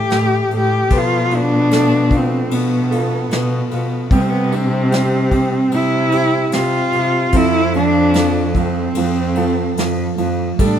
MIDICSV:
0, 0, Header, 1, 6, 480
1, 0, Start_track
1, 0, Tempo, 802139
1, 546, Time_signature, 4, 2, 24, 8
1, 3426, Tempo, 813008
1, 6418, End_track
2, 0, Start_track
2, 0, Title_t, "Harp"
2, 0, Program_c, 0, 46
2, 0, Note_on_c, 0, 52, 77
2, 0, Note_on_c, 0, 64, 51
2, 0, Note_on_c, 0, 67, 59
2, 544, Note_on_c, 0, 53, 75
2, 549, Note_on_c, 0, 69, 68
2, 576, Note_off_c, 0, 52, 0
2, 790, Note_on_c, 0, 62, 59
2, 907, Note_off_c, 0, 64, 0
2, 1023, Note_off_c, 0, 69, 0
2, 1026, Note_on_c, 0, 69, 59
2, 1257, Note_off_c, 0, 62, 0
2, 1259, Note_on_c, 0, 62, 56
2, 1738, Note_off_c, 0, 69, 0
2, 1740, Note_on_c, 0, 69, 56
2, 2221, Note_off_c, 0, 67, 0
2, 2464, Note_on_c, 0, 55, 77
2, 2468, Note_on_c, 0, 67, 69
2, 2492, Note_off_c, 0, 53, 0
2, 2700, Note_off_c, 0, 62, 0
2, 2702, Note_on_c, 0, 62, 55
2, 2818, Note_on_c, 0, 64, 50
2, 2937, Note_off_c, 0, 67, 0
2, 2940, Note_on_c, 0, 67, 65
2, 3054, Note_off_c, 0, 69, 0
2, 3656, Note_off_c, 0, 67, 0
2, 3658, Note_on_c, 0, 67, 60
2, 4365, Note_off_c, 0, 62, 0
2, 4368, Note_off_c, 0, 64, 0
2, 4377, Note_on_c, 0, 60, 78
2, 4382, Note_on_c, 0, 69, 66
2, 4409, Note_off_c, 0, 55, 0
2, 4619, Note_on_c, 0, 64, 55
2, 4853, Note_off_c, 0, 69, 0
2, 4856, Note_on_c, 0, 69, 61
2, 5048, Note_off_c, 0, 67, 0
2, 5093, Note_off_c, 0, 64, 0
2, 5095, Note_on_c, 0, 64, 50
2, 5573, Note_off_c, 0, 69, 0
2, 5575, Note_on_c, 0, 69, 58
2, 6298, Note_on_c, 0, 55, 77
2, 6300, Note_off_c, 0, 69, 0
2, 6301, Note_off_c, 0, 60, 0
2, 6303, Note_on_c, 0, 69, 67
2, 6418, Note_off_c, 0, 55, 0
2, 6418, Note_off_c, 0, 64, 0
2, 6418, Note_off_c, 0, 69, 0
2, 6418, End_track
3, 0, Start_track
3, 0, Title_t, "Cello"
3, 0, Program_c, 1, 42
3, 0, Note_on_c, 1, 67, 99
3, 299, Note_off_c, 1, 67, 0
3, 339, Note_on_c, 1, 67, 92
3, 587, Note_on_c, 1, 65, 96
3, 596, Note_off_c, 1, 67, 0
3, 819, Note_on_c, 1, 62, 106
3, 828, Note_off_c, 1, 65, 0
3, 1297, Note_on_c, 1, 60, 85
3, 1306, Note_off_c, 1, 62, 0
3, 1523, Note_on_c, 1, 59, 78
3, 1532, Note_off_c, 1, 60, 0
3, 2232, Note_off_c, 1, 59, 0
3, 2486, Note_on_c, 1, 59, 82
3, 2518, Note_on_c, 1, 60, 77
3, 2527, Note_off_c, 1, 59, 0
3, 2568, Note_on_c, 1, 59, 92
3, 2577, Note_off_c, 1, 60, 0
3, 2718, Note_on_c, 1, 60, 105
3, 2727, Note_off_c, 1, 59, 0
3, 3440, Note_on_c, 1, 64, 106
3, 3449, Note_off_c, 1, 60, 0
3, 3913, Note_on_c, 1, 65, 99
3, 3922, Note_off_c, 1, 64, 0
3, 4394, Note_on_c, 1, 64, 108
3, 4403, Note_off_c, 1, 65, 0
3, 4624, Note_off_c, 1, 64, 0
3, 4627, Note_on_c, 1, 62, 100
3, 5076, Note_off_c, 1, 62, 0
3, 5110, Note_on_c, 1, 60, 90
3, 6043, Note_off_c, 1, 60, 0
3, 6320, Note_on_c, 1, 62, 84
3, 6418, Note_off_c, 1, 62, 0
3, 6418, End_track
4, 0, Start_track
4, 0, Title_t, "Felt piano"
4, 0, Program_c, 2, 0
4, 0, Control_c, 2, 64, 127
4, 0, Note_on_c, 2, 57, 55
4, 65, Note_off_c, 2, 57, 0
4, 65, Note_on_c, 2, 57, 53
4, 307, Note_off_c, 2, 57, 0
4, 316, Note_on_c, 2, 57, 53
4, 544, Note_off_c, 2, 57, 0
4, 550, Note_on_c, 2, 71, 65
4, 554, Control_c, 2, 64, 0
4, 650, Control_c, 2, 64, 127
4, 792, Note_on_c, 2, 65, 50
4, 1032, Note_on_c, 2, 57, 56
4, 1257, Note_off_c, 2, 65, 0
4, 1265, Note_on_c, 2, 65, 58
4, 1502, Note_on_c, 2, 59, 54
4, 1733, Note_off_c, 2, 65, 0
4, 1742, Note_on_c, 2, 65, 55
4, 1962, Note_off_c, 2, 57, 0
4, 1979, Note_off_c, 2, 59, 0
4, 1988, Note_on_c, 2, 59, 54
4, 2217, Note_off_c, 2, 65, 0
4, 2226, Note_on_c, 2, 65, 50
4, 2440, Note_off_c, 2, 71, 0
4, 2450, Note_off_c, 2, 59, 0
4, 2457, Note_off_c, 2, 65, 0
4, 2462, Note_on_c, 2, 60, 67
4, 2470, Control_c, 2, 64, 0
4, 2575, Control_c, 2, 64, 127
4, 2703, Note_on_c, 2, 67, 51
4, 2933, Note_off_c, 2, 60, 0
4, 2942, Note_on_c, 2, 60, 59
4, 3170, Note_off_c, 2, 67, 0
4, 3179, Note_on_c, 2, 67, 58
4, 3418, Note_off_c, 2, 60, 0
4, 3427, Note_on_c, 2, 60, 58
4, 3656, Note_off_c, 2, 67, 0
4, 3665, Note_on_c, 2, 67, 53
4, 3897, Note_off_c, 2, 60, 0
4, 3906, Note_on_c, 2, 60, 56
4, 4140, Note_off_c, 2, 67, 0
4, 4149, Note_on_c, 2, 67, 51
4, 4368, Note_off_c, 2, 60, 0
4, 4377, Note_off_c, 2, 67, 0
4, 4386, Control_c, 2, 64, 0
4, 4386, Note_on_c, 2, 53, 64
4, 4497, Control_c, 2, 64, 127
4, 4614, Note_off_c, 2, 53, 0
4, 4623, Note_on_c, 2, 53, 47
4, 4853, Note_off_c, 2, 53, 0
4, 4862, Note_on_c, 2, 53, 52
4, 5092, Note_off_c, 2, 53, 0
4, 5101, Note_on_c, 2, 53, 53
4, 5334, Note_off_c, 2, 53, 0
4, 5343, Note_on_c, 2, 53, 58
4, 5569, Note_off_c, 2, 53, 0
4, 5578, Note_on_c, 2, 53, 55
4, 5812, Note_off_c, 2, 53, 0
4, 5821, Note_on_c, 2, 53, 49
4, 6048, Note_off_c, 2, 53, 0
4, 6057, Note_on_c, 2, 53, 52
4, 6293, Note_off_c, 2, 53, 0
4, 6300, Note_on_c, 2, 57, 66
4, 6308, Control_c, 2, 64, 0
4, 6414, Control_c, 2, 64, 127
4, 6418, Note_off_c, 2, 57, 0
4, 6418, End_track
5, 0, Start_track
5, 0, Title_t, "Cello"
5, 0, Program_c, 3, 42
5, 63, Note_on_c, 3, 45, 83
5, 283, Note_off_c, 3, 45, 0
5, 302, Note_on_c, 3, 45, 80
5, 522, Note_off_c, 3, 45, 0
5, 543, Note_on_c, 3, 47, 91
5, 1478, Note_off_c, 3, 47, 0
5, 1497, Note_on_c, 3, 47, 86
5, 1956, Note_off_c, 3, 47, 0
5, 1987, Note_on_c, 3, 47, 93
5, 2203, Note_off_c, 3, 47, 0
5, 2222, Note_on_c, 3, 47, 77
5, 2440, Note_off_c, 3, 47, 0
5, 2460, Note_on_c, 3, 48, 95
5, 3399, Note_off_c, 3, 48, 0
5, 3426, Note_on_c, 3, 48, 88
5, 3878, Note_off_c, 3, 48, 0
5, 3901, Note_on_c, 3, 48, 83
5, 4118, Note_off_c, 3, 48, 0
5, 4147, Note_on_c, 3, 48, 77
5, 4361, Note_off_c, 3, 48, 0
5, 4375, Note_on_c, 3, 41, 97
5, 5310, Note_off_c, 3, 41, 0
5, 5339, Note_on_c, 3, 41, 81
5, 5796, Note_off_c, 3, 41, 0
5, 5819, Note_on_c, 3, 41, 83
5, 6038, Note_off_c, 3, 41, 0
5, 6062, Note_on_c, 3, 41, 75
5, 6281, Note_off_c, 3, 41, 0
5, 6296, Note_on_c, 3, 45, 92
5, 6418, Note_off_c, 3, 45, 0
5, 6418, End_track
6, 0, Start_track
6, 0, Title_t, "Drums"
6, 59, Note_on_c, 9, 51, 59
6, 69, Note_on_c, 9, 38, 80
6, 119, Note_off_c, 9, 51, 0
6, 129, Note_off_c, 9, 38, 0
6, 303, Note_on_c, 9, 51, 47
6, 363, Note_off_c, 9, 51, 0
6, 539, Note_on_c, 9, 51, 66
6, 543, Note_on_c, 9, 36, 86
6, 599, Note_off_c, 9, 51, 0
6, 603, Note_off_c, 9, 36, 0
6, 782, Note_on_c, 9, 51, 53
6, 842, Note_off_c, 9, 51, 0
6, 1023, Note_on_c, 9, 51, 72
6, 1034, Note_on_c, 9, 38, 84
6, 1083, Note_off_c, 9, 51, 0
6, 1093, Note_off_c, 9, 38, 0
6, 1261, Note_on_c, 9, 36, 71
6, 1264, Note_on_c, 9, 51, 53
6, 1321, Note_off_c, 9, 36, 0
6, 1323, Note_off_c, 9, 51, 0
6, 1503, Note_on_c, 9, 51, 74
6, 1563, Note_off_c, 9, 51, 0
6, 1747, Note_on_c, 9, 51, 56
6, 1807, Note_off_c, 9, 51, 0
6, 1979, Note_on_c, 9, 51, 61
6, 1990, Note_on_c, 9, 38, 88
6, 2039, Note_off_c, 9, 51, 0
6, 2049, Note_off_c, 9, 38, 0
6, 2221, Note_on_c, 9, 51, 49
6, 2281, Note_off_c, 9, 51, 0
6, 2459, Note_on_c, 9, 36, 93
6, 2460, Note_on_c, 9, 51, 61
6, 2518, Note_off_c, 9, 36, 0
6, 2520, Note_off_c, 9, 51, 0
6, 2704, Note_on_c, 9, 51, 53
6, 2764, Note_off_c, 9, 51, 0
6, 2943, Note_on_c, 9, 51, 68
6, 2953, Note_on_c, 9, 38, 90
6, 3003, Note_off_c, 9, 51, 0
6, 3013, Note_off_c, 9, 38, 0
6, 3180, Note_on_c, 9, 36, 65
6, 3181, Note_on_c, 9, 51, 49
6, 3240, Note_off_c, 9, 36, 0
6, 3240, Note_off_c, 9, 51, 0
6, 3419, Note_on_c, 9, 51, 65
6, 3478, Note_off_c, 9, 51, 0
6, 3657, Note_on_c, 9, 51, 48
6, 3716, Note_off_c, 9, 51, 0
6, 3893, Note_on_c, 9, 51, 63
6, 3903, Note_on_c, 9, 38, 80
6, 3952, Note_off_c, 9, 51, 0
6, 3962, Note_off_c, 9, 38, 0
6, 4134, Note_on_c, 9, 51, 46
6, 4193, Note_off_c, 9, 51, 0
6, 4369, Note_on_c, 9, 51, 66
6, 4374, Note_on_c, 9, 36, 82
6, 4428, Note_off_c, 9, 51, 0
6, 4433, Note_off_c, 9, 36, 0
6, 4612, Note_on_c, 9, 51, 52
6, 4671, Note_off_c, 9, 51, 0
6, 4850, Note_on_c, 9, 51, 67
6, 4860, Note_on_c, 9, 38, 84
6, 4909, Note_off_c, 9, 51, 0
6, 4919, Note_off_c, 9, 38, 0
6, 5092, Note_on_c, 9, 36, 67
6, 5094, Note_on_c, 9, 51, 50
6, 5151, Note_off_c, 9, 36, 0
6, 5153, Note_off_c, 9, 51, 0
6, 5328, Note_on_c, 9, 51, 75
6, 5387, Note_off_c, 9, 51, 0
6, 5567, Note_on_c, 9, 51, 53
6, 5626, Note_off_c, 9, 51, 0
6, 5815, Note_on_c, 9, 51, 65
6, 5825, Note_on_c, 9, 38, 80
6, 5874, Note_off_c, 9, 51, 0
6, 5884, Note_off_c, 9, 38, 0
6, 6055, Note_on_c, 9, 51, 55
6, 6114, Note_off_c, 9, 51, 0
6, 6298, Note_on_c, 9, 51, 71
6, 6299, Note_on_c, 9, 36, 85
6, 6357, Note_off_c, 9, 51, 0
6, 6358, Note_off_c, 9, 36, 0
6, 6418, End_track
0, 0, End_of_file